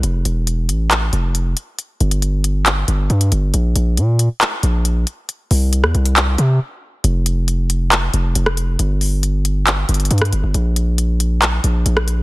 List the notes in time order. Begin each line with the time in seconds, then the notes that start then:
0.03 F1, closed hi-hat
0.25 E1, closed hi-hat
0.47 closed hi-hat
0.69 A1, closed hi-hat
0.91 clap, closed hi-hat
1.13 F1, closed hi-hat
1.35 closed hi-hat
1.57 closed hi-hat
1.79 closed hi-hat
2.00 G1, closed hi-hat
2.11 closed hi-hat
2.22 closed hi-hat
2.44 closed hi-hat
2.66 clap, closed hi-hat
2.88 G1, closed hi-hat
3.10 G2, closed hi-hat
3.21 closed hi-hat
3.32 G1, closed hi-hat
3.54 A#1, closed hi-hat
3.76 A#1, closed hi-hat
3.97 A#2, closed hi-hat
4.19 closed hi-hat
4.41 clap, closed hi-hat
4.63 A#1, closed hi-hat
4.85 closed hi-hat
5.07 closed hi-hat
5.29 closed hi-hat
5.51 C2, open hi-hat
5.73 closed hi-hat
5.84 E2, cross-stick
5.95 C2, closed hi-hat
6.06 closed hi-hat
6.16 clap, closed hi-hat
6.38 C3, closed hi-hat
7.04 F1, closed hi-hat
7.26 closed hi-hat
7.48 closed hi-hat
7.70 closed hi-hat
7.92 clap, closed hi-hat
8.14 F1, closed hi-hat
8.35 F1, closed hi-hat
8.46 cross-stick
8.57 closed hi-hat
8.79 G1, closed hi-hat
9.01 open hi-hat
9.23 closed hi-hat
9.45 closed hi-hat
9.67 clap, closed hi-hat
9.89 G1, closed hi-hat
9.94 closed hi-hat
10.00 closed hi-hat
10.05 closed hi-hat
10.11 G2, closed hi-hat
10.18 cross-stick, closed hi-hat
10.25 closed hi-hat
10.33 G1, closed hi-hat
10.44 G1
10.54 A#1, closed hi-hat
10.76 closed hi-hat
10.98 closed hi-hat
11.20 closed hi-hat
11.42 clap, closed hi-hat
11.64 A#1, closed hi-hat
11.86 A#1, closed hi-hat
11.97 cross-stick
12.08 closed hi-hat